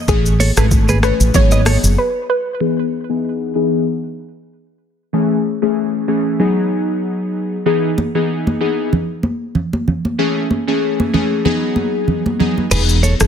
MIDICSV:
0, 0, Header, 1, 6, 480
1, 0, Start_track
1, 0, Key_signature, 4, "major"
1, 0, Tempo, 631579
1, 63, Time_signature, 4, 2, 24, 8
1, 10086, End_track
2, 0, Start_track
2, 0, Title_t, "Clean electric guitar"
2, 0, Program_c, 0, 27
2, 304, Note_on_c, 0, 73, 84
2, 309, Note_on_c, 0, 69, 63
2, 380, Note_off_c, 0, 73, 0
2, 384, Note_off_c, 0, 69, 0
2, 436, Note_on_c, 0, 71, 80
2, 442, Note_on_c, 0, 68, 65
2, 498, Note_off_c, 0, 71, 0
2, 503, Note_off_c, 0, 68, 0
2, 675, Note_on_c, 0, 71, 79
2, 682, Note_on_c, 0, 68, 59
2, 738, Note_off_c, 0, 71, 0
2, 743, Note_off_c, 0, 68, 0
2, 784, Note_on_c, 0, 73, 73
2, 790, Note_on_c, 0, 69, 57
2, 860, Note_off_c, 0, 73, 0
2, 865, Note_off_c, 0, 69, 0
2, 1156, Note_on_c, 0, 75, 82
2, 1162, Note_on_c, 0, 71, 60
2, 1219, Note_off_c, 0, 75, 0
2, 1223, Note_off_c, 0, 71, 0
2, 1263, Note_on_c, 0, 73, 85
2, 1270, Note_on_c, 0, 69, 64
2, 1340, Note_off_c, 0, 73, 0
2, 1345, Note_off_c, 0, 69, 0
2, 9662, Note_on_c, 0, 71, 89
2, 9668, Note_on_c, 0, 68, 68
2, 9739, Note_off_c, 0, 71, 0
2, 9744, Note_off_c, 0, 68, 0
2, 9903, Note_on_c, 0, 73, 74
2, 9909, Note_on_c, 0, 69, 59
2, 9980, Note_off_c, 0, 73, 0
2, 9984, Note_off_c, 0, 69, 0
2, 10086, End_track
3, 0, Start_track
3, 0, Title_t, "Synth pluck"
3, 0, Program_c, 1, 84
3, 66, Note_on_c, 1, 68, 106
3, 177, Note_off_c, 1, 68, 0
3, 440, Note_on_c, 1, 69, 71
3, 530, Note_off_c, 1, 69, 0
3, 788, Note_on_c, 1, 71, 86
3, 898, Note_off_c, 1, 71, 0
3, 1029, Note_on_c, 1, 73, 104
3, 1376, Note_off_c, 1, 73, 0
3, 1508, Note_on_c, 1, 71, 79
3, 1618, Note_off_c, 1, 71, 0
3, 1745, Note_on_c, 1, 71, 86
3, 1856, Note_off_c, 1, 71, 0
3, 10086, End_track
4, 0, Start_track
4, 0, Title_t, "Synth keys"
4, 0, Program_c, 2, 88
4, 60, Note_on_c, 2, 52, 94
4, 62, Note_on_c, 2, 57, 88
4, 63, Note_on_c, 2, 61, 87
4, 64, Note_on_c, 2, 68, 103
4, 247, Note_off_c, 2, 52, 0
4, 248, Note_off_c, 2, 57, 0
4, 249, Note_off_c, 2, 61, 0
4, 249, Note_off_c, 2, 68, 0
4, 432, Note_on_c, 2, 52, 79
4, 434, Note_on_c, 2, 57, 73
4, 435, Note_on_c, 2, 61, 70
4, 436, Note_on_c, 2, 68, 84
4, 756, Note_off_c, 2, 52, 0
4, 756, Note_off_c, 2, 57, 0
4, 757, Note_off_c, 2, 61, 0
4, 758, Note_off_c, 2, 68, 0
4, 779, Note_on_c, 2, 52, 81
4, 782, Note_on_c, 2, 57, 73
4, 783, Note_on_c, 2, 61, 71
4, 785, Note_on_c, 2, 68, 90
4, 1004, Note_off_c, 2, 52, 0
4, 1005, Note_off_c, 2, 57, 0
4, 1006, Note_off_c, 2, 61, 0
4, 1006, Note_off_c, 2, 68, 0
4, 1019, Note_on_c, 2, 54, 95
4, 1020, Note_on_c, 2, 59, 88
4, 1022, Note_on_c, 2, 63, 86
4, 1023, Note_on_c, 2, 68, 106
4, 1501, Note_off_c, 2, 54, 0
4, 1502, Note_off_c, 2, 59, 0
4, 1502, Note_off_c, 2, 63, 0
4, 1503, Note_off_c, 2, 68, 0
4, 1979, Note_on_c, 2, 52, 87
4, 1980, Note_on_c, 2, 59, 78
4, 1981, Note_on_c, 2, 63, 77
4, 1983, Note_on_c, 2, 68, 96
4, 2167, Note_off_c, 2, 52, 0
4, 2168, Note_off_c, 2, 59, 0
4, 2168, Note_off_c, 2, 63, 0
4, 2169, Note_off_c, 2, 68, 0
4, 2351, Note_on_c, 2, 52, 72
4, 2352, Note_on_c, 2, 59, 65
4, 2353, Note_on_c, 2, 63, 66
4, 2355, Note_on_c, 2, 68, 82
4, 2675, Note_off_c, 2, 52, 0
4, 2675, Note_off_c, 2, 59, 0
4, 2676, Note_off_c, 2, 63, 0
4, 2677, Note_off_c, 2, 68, 0
4, 2698, Note_on_c, 2, 52, 74
4, 2700, Note_on_c, 2, 59, 67
4, 2701, Note_on_c, 2, 63, 66
4, 2703, Note_on_c, 2, 68, 82
4, 2923, Note_off_c, 2, 52, 0
4, 2924, Note_off_c, 2, 59, 0
4, 2925, Note_off_c, 2, 63, 0
4, 2926, Note_off_c, 2, 68, 0
4, 3899, Note_on_c, 2, 52, 86
4, 3900, Note_on_c, 2, 57, 81
4, 3902, Note_on_c, 2, 61, 80
4, 3904, Note_on_c, 2, 68, 92
4, 4087, Note_off_c, 2, 52, 0
4, 4088, Note_off_c, 2, 57, 0
4, 4088, Note_off_c, 2, 61, 0
4, 4089, Note_off_c, 2, 68, 0
4, 4270, Note_on_c, 2, 52, 72
4, 4272, Note_on_c, 2, 57, 65
4, 4274, Note_on_c, 2, 61, 68
4, 4275, Note_on_c, 2, 68, 82
4, 4595, Note_off_c, 2, 52, 0
4, 4595, Note_off_c, 2, 57, 0
4, 4596, Note_off_c, 2, 61, 0
4, 4597, Note_off_c, 2, 68, 0
4, 4618, Note_on_c, 2, 52, 75
4, 4620, Note_on_c, 2, 57, 65
4, 4621, Note_on_c, 2, 61, 66
4, 4622, Note_on_c, 2, 68, 80
4, 4843, Note_off_c, 2, 52, 0
4, 4844, Note_off_c, 2, 57, 0
4, 4845, Note_off_c, 2, 61, 0
4, 4845, Note_off_c, 2, 68, 0
4, 4859, Note_on_c, 2, 54, 89
4, 4860, Note_on_c, 2, 59, 78
4, 4862, Note_on_c, 2, 63, 77
4, 4863, Note_on_c, 2, 68, 96
4, 5752, Note_off_c, 2, 54, 0
4, 5753, Note_off_c, 2, 59, 0
4, 5753, Note_off_c, 2, 63, 0
4, 5754, Note_off_c, 2, 68, 0
4, 5819, Note_on_c, 2, 52, 86
4, 5821, Note_on_c, 2, 59, 80
4, 5823, Note_on_c, 2, 63, 78
4, 5824, Note_on_c, 2, 68, 95
4, 6007, Note_off_c, 2, 52, 0
4, 6008, Note_off_c, 2, 59, 0
4, 6009, Note_off_c, 2, 63, 0
4, 6009, Note_off_c, 2, 68, 0
4, 6192, Note_on_c, 2, 52, 73
4, 6194, Note_on_c, 2, 59, 67
4, 6195, Note_on_c, 2, 63, 68
4, 6196, Note_on_c, 2, 68, 83
4, 6516, Note_off_c, 2, 52, 0
4, 6516, Note_off_c, 2, 59, 0
4, 6517, Note_off_c, 2, 63, 0
4, 6517, Note_off_c, 2, 68, 0
4, 6539, Note_on_c, 2, 52, 71
4, 6541, Note_on_c, 2, 59, 68
4, 6542, Note_on_c, 2, 63, 66
4, 6544, Note_on_c, 2, 68, 82
4, 6764, Note_off_c, 2, 52, 0
4, 6765, Note_off_c, 2, 59, 0
4, 6765, Note_off_c, 2, 63, 0
4, 6766, Note_off_c, 2, 68, 0
4, 7740, Note_on_c, 2, 52, 83
4, 7741, Note_on_c, 2, 57, 78
4, 7743, Note_on_c, 2, 61, 80
4, 7744, Note_on_c, 2, 68, 98
4, 7927, Note_off_c, 2, 52, 0
4, 7928, Note_off_c, 2, 57, 0
4, 7929, Note_off_c, 2, 61, 0
4, 7930, Note_off_c, 2, 68, 0
4, 8113, Note_on_c, 2, 52, 75
4, 8114, Note_on_c, 2, 57, 70
4, 8116, Note_on_c, 2, 61, 66
4, 8118, Note_on_c, 2, 68, 81
4, 8436, Note_off_c, 2, 52, 0
4, 8436, Note_off_c, 2, 57, 0
4, 8438, Note_off_c, 2, 61, 0
4, 8438, Note_off_c, 2, 68, 0
4, 8460, Note_on_c, 2, 52, 75
4, 8462, Note_on_c, 2, 57, 69
4, 8464, Note_on_c, 2, 61, 66
4, 8465, Note_on_c, 2, 68, 84
4, 8684, Note_off_c, 2, 52, 0
4, 8685, Note_off_c, 2, 57, 0
4, 8686, Note_off_c, 2, 61, 0
4, 8687, Note_off_c, 2, 68, 0
4, 8701, Note_on_c, 2, 54, 88
4, 8702, Note_on_c, 2, 59, 85
4, 8704, Note_on_c, 2, 63, 83
4, 8705, Note_on_c, 2, 68, 99
4, 9370, Note_off_c, 2, 54, 0
4, 9371, Note_off_c, 2, 59, 0
4, 9372, Note_off_c, 2, 63, 0
4, 9372, Note_off_c, 2, 68, 0
4, 9420, Note_on_c, 2, 54, 75
4, 9421, Note_on_c, 2, 59, 66
4, 9422, Note_on_c, 2, 63, 65
4, 9425, Note_on_c, 2, 68, 79
4, 9607, Note_off_c, 2, 54, 0
4, 9608, Note_off_c, 2, 59, 0
4, 9609, Note_off_c, 2, 63, 0
4, 9610, Note_off_c, 2, 68, 0
4, 9662, Note_on_c, 2, 52, 90
4, 9663, Note_on_c, 2, 59, 82
4, 9665, Note_on_c, 2, 63, 83
4, 9667, Note_on_c, 2, 68, 97
4, 9848, Note_off_c, 2, 52, 0
4, 9849, Note_off_c, 2, 59, 0
4, 9850, Note_off_c, 2, 63, 0
4, 9851, Note_off_c, 2, 68, 0
4, 10032, Note_on_c, 2, 52, 77
4, 10034, Note_on_c, 2, 59, 68
4, 10036, Note_on_c, 2, 63, 71
4, 10037, Note_on_c, 2, 68, 83
4, 10086, Note_off_c, 2, 52, 0
4, 10086, Note_off_c, 2, 59, 0
4, 10086, Note_off_c, 2, 63, 0
4, 10086, Note_off_c, 2, 68, 0
4, 10086, End_track
5, 0, Start_track
5, 0, Title_t, "Fretless electric bass"
5, 0, Program_c, 3, 35
5, 62, Note_on_c, 3, 33, 115
5, 377, Note_off_c, 3, 33, 0
5, 432, Note_on_c, 3, 32, 95
5, 839, Note_off_c, 3, 32, 0
5, 913, Note_on_c, 3, 33, 97
5, 1005, Note_off_c, 3, 33, 0
5, 1022, Note_on_c, 3, 32, 96
5, 1337, Note_off_c, 3, 32, 0
5, 1393, Note_on_c, 3, 30, 87
5, 1485, Note_off_c, 3, 30, 0
5, 9662, Note_on_c, 3, 28, 107
5, 9977, Note_off_c, 3, 28, 0
5, 10034, Note_on_c, 3, 30, 100
5, 10086, Note_off_c, 3, 30, 0
5, 10086, End_track
6, 0, Start_track
6, 0, Title_t, "Drums"
6, 63, Note_on_c, 9, 36, 105
6, 63, Note_on_c, 9, 82, 65
6, 139, Note_off_c, 9, 36, 0
6, 139, Note_off_c, 9, 82, 0
6, 196, Note_on_c, 9, 82, 55
6, 272, Note_off_c, 9, 82, 0
6, 304, Note_on_c, 9, 63, 77
6, 307, Note_on_c, 9, 46, 53
6, 307, Note_on_c, 9, 82, 53
6, 380, Note_off_c, 9, 63, 0
6, 383, Note_off_c, 9, 46, 0
6, 383, Note_off_c, 9, 82, 0
6, 433, Note_on_c, 9, 82, 90
6, 436, Note_on_c, 9, 37, 110
6, 509, Note_off_c, 9, 82, 0
6, 512, Note_off_c, 9, 37, 0
6, 541, Note_on_c, 9, 82, 85
6, 542, Note_on_c, 9, 36, 101
6, 617, Note_off_c, 9, 82, 0
6, 618, Note_off_c, 9, 36, 0
6, 672, Note_on_c, 9, 82, 55
6, 677, Note_on_c, 9, 63, 89
6, 748, Note_off_c, 9, 82, 0
6, 753, Note_off_c, 9, 63, 0
6, 783, Note_on_c, 9, 37, 97
6, 786, Note_on_c, 9, 82, 48
6, 859, Note_off_c, 9, 37, 0
6, 862, Note_off_c, 9, 82, 0
6, 916, Note_on_c, 9, 82, 85
6, 992, Note_off_c, 9, 82, 0
6, 1021, Note_on_c, 9, 82, 81
6, 1022, Note_on_c, 9, 36, 122
6, 1025, Note_on_c, 9, 64, 77
6, 1097, Note_off_c, 9, 82, 0
6, 1098, Note_off_c, 9, 36, 0
6, 1101, Note_off_c, 9, 64, 0
6, 1150, Note_on_c, 9, 82, 63
6, 1157, Note_on_c, 9, 63, 62
6, 1226, Note_off_c, 9, 82, 0
6, 1233, Note_off_c, 9, 63, 0
6, 1256, Note_on_c, 9, 63, 77
6, 1262, Note_on_c, 9, 37, 103
6, 1263, Note_on_c, 9, 46, 62
6, 1263, Note_on_c, 9, 82, 58
6, 1332, Note_off_c, 9, 63, 0
6, 1338, Note_off_c, 9, 37, 0
6, 1339, Note_off_c, 9, 46, 0
6, 1339, Note_off_c, 9, 82, 0
6, 1399, Note_on_c, 9, 82, 95
6, 1475, Note_off_c, 9, 82, 0
6, 6064, Note_on_c, 9, 63, 73
6, 6140, Note_off_c, 9, 63, 0
6, 6437, Note_on_c, 9, 63, 81
6, 6513, Note_off_c, 9, 63, 0
6, 6785, Note_on_c, 9, 64, 71
6, 6861, Note_off_c, 9, 64, 0
6, 7016, Note_on_c, 9, 63, 75
6, 7092, Note_off_c, 9, 63, 0
6, 7258, Note_on_c, 9, 64, 70
6, 7334, Note_off_c, 9, 64, 0
6, 7397, Note_on_c, 9, 63, 78
6, 7473, Note_off_c, 9, 63, 0
6, 7507, Note_on_c, 9, 64, 75
6, 7583, Note_off_c, 9, 64, 0
6, 7637, Note_on_c, 9, 63, 68
6, 7713, Note_off_c, 9, 63, 0
6, 7985, Note_on_c, 9, 63, 74
6, 8061, Note_off_c, 9, 63, 0
6, 8358, Note_on_c, 9, 63, 87
6, 8434, Note_off_c, 9, 63, 0
6, 8468, Note_on_c, 9, 64, 75
6, 8544, Note_off_c, 9, 64, 0
6, 8705, Note_on_c, 9, 64, 70
6, 8781, Note_off_c, 9, 64, 0
6, 8937, Note_on_c, 9, 63, 71
6, 9013, Note_off_c, 9, 63, 0
6, 9179, Note_on_c, 9, 64, 71
6, 9255, Note_off_c, 9, 64, 0
6, 9317, Note_on_c, 9, 63, 78
6, 9393, Note_off_c, 9, 63, 0
6, 9426, Note_on_c, 9, 64, 74
6, 9502, Note_off_c, 9, 64, 0
6, 9558, Note_on_c, 9, 63, 67
6, 9634, Note_off_c, 9, 63, 0
6, 9663, Note_on_c, 9, 49, 90
6, 9663, Note_on_c, 9, 82, 64
6, 9739, Note_off_c, 9, 49, 0
6, 9739, Note_off_c, 9, 82, 0
6, 9797, Note_on_c, 9, 82, 54
6, 9873, Note_off_c, 9, 82, 0
6, 9905, Note_on_c, 9, 63, 76
6, 9907, Note_on_c, 9, 82, 52
6, 9981, Note_off_c, 9, 63, 0
6, 9983, Note_off_c, 9, 82, 0
6, 10034, Note_on_c, 9, 82, 80
6, 10037, Note_on_c, 9, 37, 104
6, 10086, Note_off_c, 9, 37, 0
6, 10086, Note_off_c, 9, 82, 0
6, 10086, End_track
0, 0, End_of_file